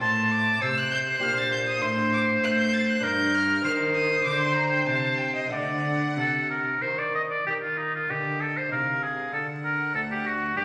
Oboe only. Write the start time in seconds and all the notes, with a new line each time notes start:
0.01 A5
0.61 C5
1.82 C5
3.03 A#4
3.65 C5
5.53 D5
6.18 A4
6.50 A#4
6.82 C5
6.98 D5
7.15 D#5
7.30 D5
7.46 G4
7.62 F4
7.78 D#4
7.95 F4
8.10 G4
8.41 A4
8.57 C5
8.71 A#4
9.03 G#4
9.33 A4
9.64 A#4
9.95 A4
10.11 G4
10.26 F#4
10.56 G4